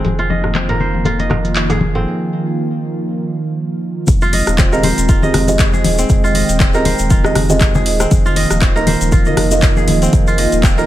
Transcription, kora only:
Already playing: C4 F4 G#4 D#5
0.19 F4
0.30 D#5
0.55 C4
0.69 A#4
0.80 C5
1.06 F4
1.20 D#5
1.70 G#4
1.95 C4
4.22 F4
4.33 D#5
4.59 C4
4.73 A#4
4.84 C5
5.09 F4
5.23 D#5
5.73 G#4
5.99 C4
6.24 F4
6.35 D#5
6.60 C4
6.74 A#4
6.85 C5
7.11 F4
7.25 D#5
7.75 G#4
8.00 C4
8.26 F4
8.36 D#5
8.62 C4
8.76 A#4
8.87 C5
9.12 F4
9.27 D#5
9.77 G#4
10.02 C4
10.28 F4
10.38 D#5
10.64 C4
10.78 A#4

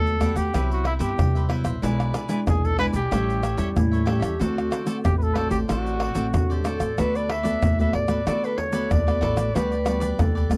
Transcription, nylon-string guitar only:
Already playing: D3 A3 B3 F#4
0.20 A3 B3 F#4
0.53 C3 F#3 E4
0.99 B3 E4
1.17 G2
1.48 F#3 B3 E4
1.82 B2 G#3 D4 E4
2.28 G#3 D4 E4
2.47 B2
2.78 G#3 D4 E4
3.11 A2 G3 C#4 E4
3.57 G3 C#4 E4
3.76 E3
4.06 G3 C#4 E4
4.39 D3 A3 C4 F#4
4.85 A3 C4 F#4
5.04 A2
5.35 A3 C4 F#4
5.68 D3 A3 C4 F#4
6.15 A3 C4 F#4
6.33 A2
6.65 A3 C4 F#4
6.97 D3 A3 B3 F#4
7.43 A3 B3 F#4
7.62 A2
7.79 A3 B3 F#4
8.08 A3 B3 F#4
8.26 D3 A3 B3 F#4
8.71 A3 B3 F#4
8.90 A2
9.06 A3 B3 F#4
9.54 D3 G3 B3 F#4
9.85 G3 B3 F#4
10.19 D3
10.50 G3 B3 F#4

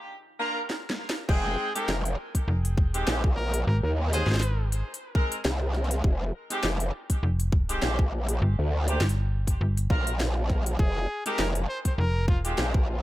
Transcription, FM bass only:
2.48 F1
3.67 G#1
4.27 G#1
7.23 F1
8.42 G1
9.01 G1
9.61 G1
11.98 F1

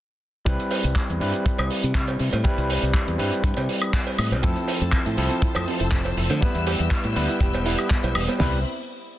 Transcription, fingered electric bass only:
0.46 C2
0.84 C2
1.09 E2
1.21 G2
1.59 C2
1.84 C3
2.20 C3
2.33 A2
2.45 muted fingered electric bass stroke
2.58 C2
2.83 C2
3.08 E2
3.19 G2
3.44 G2
3.57 C3
4.19 A2
4.31 C2
4.44 F2
4.81 F2
5.06 A2
5.18 C2
5.42 muted fingered electric bass stroke
5.56 F2
5.80 F1
6.17 F1
6.30 D3
6.55 E2
6.80 E2
7.04 A2
7.16 D2
7.41 E1
8.04 B1
8.15 E1
8.40 C2

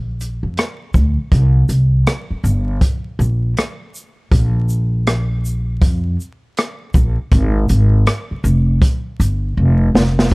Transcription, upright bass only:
Already playing: A#1
0.43 F2
0.95 D2
1.32 C2
1.69 C2
2.30 muted upright bass stroke
2.44 G1
3.19 A#1
4.32 A#1
5.82 F2
6.95 A#1
7.32 G#1
7.70 G#1
8.31 muted upright bass stroke
8.44 F1
9.20 G1
9.57 F1
9.95 F1

